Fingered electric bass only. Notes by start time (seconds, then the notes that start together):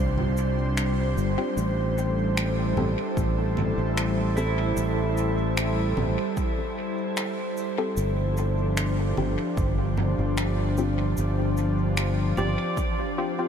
Already playing: C2
1.17 G1
1.57 A1
2.77 A1
3.17 A1
3.78 A1
4.77 A1
5.97 A1
7.97 G1
9.18 G1
9.57 G1
10.19 G1
11.18 G1
12.37 G1